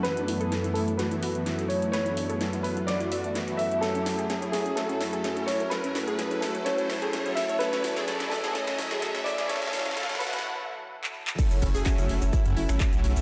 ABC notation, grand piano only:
X:1
M:4/4
L:1/8
Q:1/4=127
K:F#m
V:1 name="Grand piano"
B3 A B2 z c | c3 B d2 z e | A3 G A2 z c | B3 A c2 z e |
B3 A c2 z d | c3 B z4 | z8 |]